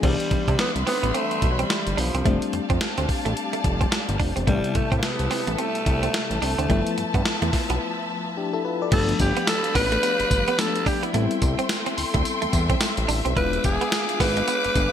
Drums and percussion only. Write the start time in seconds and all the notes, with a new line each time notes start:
0.03 kick, closed hi-hat, crash
0.20 closed hi-hat
0.31 kick, closed hi-hat
0.48 kick, closed hi-hat
0.59 snare, closed hi-hat
0.76 closed hi-hat
0.87 snare, open hi-hat
1.04 closed hi-hat
1.15 closed hi-hat
1.31 closed hi-hat
1.42 kick, closed hi-hat
1.59 closed hi-hat
1.70 snare, closed hi-hat
1.87 closed hi-hat
1.98 open hi-hat
2.15 closed hi-hat
2.26 kick, closed hi-hat
2.42 closed hi-hat
2.53 closed hi-hat
2.70 kick, closed hi-hat
2.81 snare, closed hi-hat
2.98 closed hi-hat
3.09 kick, open hi-hat
3.26 closed hi-hat
3.37 closed hi-hat
3.53 closed hi-hat
3.64 kick, closed hi-hat
3.81 kick, closed hi-hat
3.92 snare, closed hi-hat
4.09 closed hi-hat
4.20 kick, open hi-hat
4.37 closed hi-hat
4.47 kick, closed hi-hat
4.64 closed hi-hat
4.75 kick, closed hi-hat
4.92 kick, closed hi-hat
5.03 snare, closed hi-hat
5.19 closed hi-hat
5.31 snare, open hi-hat
5.47 closed hi-hat
5.58 closed hi-hat
5.75 closed hi-hat
5.86 kick, closed hi-hat
6.03 closed hi-hat
6.14 snare, closed hi-hat
6.31 closed hi-hat
6.42 open hi-hat
6.59 closed hi-hat
6.70 kick, closed hi-hat
6.87 closed hi-hat
6.98 closed hi-hat
7.14 kick, closed hi-hat
7.25 snare, closed hi-hat
7.42 closed hi-hat
7.53 kick, snare, open hi-hat
7.70 closed hi-hat
8.92 kick, closed hi-hat, crash
9.09 closed hi-hat
9.19 kick, closed hi-hat, tambourine
9.37 closed hi-hat
9.47 snare, closed hi-hat, tambourine
9.64 closed hi-hat
9.75 kick, snare, open hi-hat, tambourine
9.92 closed hi-hat
10.03 closed hi-hat, tambourine
10.20 closed hi-hat
10.31 kick, closed hi-hat, tambourine
10.48 closed hi-hat
10.59 snare, closed hi-hat, tambourine
10.76 closed hi-hat
10.86 kick, open hi-hat, tambourine
11.03 closed hi-hat
11.14 closed hi-hat
11.31 closed hi-hat
11.42 kick, closed hi-hat, tambourine
11.59 closed hi-hat
11.69 snare, closed hi-hat, tambourine
11.86 closed hi-hat
11.98 open hi-hat, tambourine
12.14 kick, closed hi-hat
12.25 closed hi-hat, tambourine
12.42 closed hi-hat
12.53 kick, closed hi-hat, tambourine
12.70 kick, closed hi-hat
12.81 snare, closed hi-hat, tambourine
12.97 closed hi-hat
13.09 open hi-hat, tambourine
13.26 closed hi-hat
13.37 kick, closed hi-hat
13.53 closed hi-hat
13.64 kick, closed hi-hat, tambourine
13.81 closed hi-hat
13.92 snare, closed hi-hat, tambourine
14.09 closed hi-hat
14.20 kick, snare, open hi-hat, tambourine
14.37 closed hi-hat
14.47 closed hi-hat, tambourine
14.64 closed hi-hat
14.75 kick, closed hi-hat, tambourine